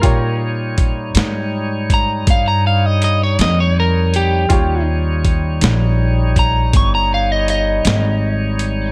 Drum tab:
HH |x-xx-xx-xx-x|x-xx-xx-xx-x|
SD |---o-----o--|---o-----o--|
BD |o-o--oo-----|o-o--oo-----|